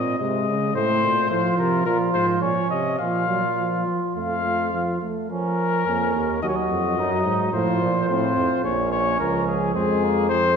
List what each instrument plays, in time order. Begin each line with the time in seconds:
Already playing: bass trombone A#2, euphonium C4, trumpet D#5
0.19 bass trombone C3, euphonium G#3, trumpet D#5
0.47 bass trombone C#3
0.74 bass trombone A2, euphonium A3, flugelhorn C4, trumpet C5
1.03 bass trombone A#2
1.30 bass trombone A2, euphonium F3, flugelhorn F4, trumpet C5
1.58 bass trombone C3, trumpet A#4
1.85 bass trombone A#2, euphonium F3, flugelhorn F4, trumpet A#4
2.14 bass trombone G#2, trumpet C5
2.42 bass trombone A#2, flugelhorn C#4, trumpet C#5
2.71 bass trombone C3, trumpet D#5
2.99 bass trombone A#2, euphonium F3, flugelhorn F4, trumpet F5
3.29 euphonium F#3
3.58 euphonium F3
3.87 euphonium F3
4.15 bass trombone F2, euphonium A3, flugelhorn F4, trumpet F5
4.45 euphonium A3
4.74 euphonium F3
5.02 euphonium A3
5.30 euphonium F3, flugelhorn C#4, trumpet A#4
5.86 bass trombone F2, euphonium A#3, flugelhorn C#4
6.14 bass trombone D#2
6.42 bass trombone D#2, euphonium F#3, flugelhorn F#4, trumpet D#5
6.49 trumpet C#5
6.56 trumpet D#5
6.70 bass trombone F2
6.98 bass trombone F#2, euphonium F#3, flugelhorn D#4
7.25 bass trombone G#2
7.53 bass trombone A2, euphonium F3, flugelhorn F4, trumpet C5
7.81 bass trombone A#2
8.09 bass trombone A2, euphonium C4, flugelhorn F4, trumpet C5
8.36 bass trombone F2
8.64 bass trombone A#1, euphonium A#3, flugelhorn C#4, trumpet C#5
8.92 trumpet C#5
9.19 bass trombone C#2, euphonium F3, trumpet A#4
9.48 trumpet G#4
9.74 bass trombone F2, euphonium G#3, flugelhorn C4, trumpet G#4
10.04 flugelhorn A#3
10.29 euphonium F3, flugelhorn C4, trumpet C5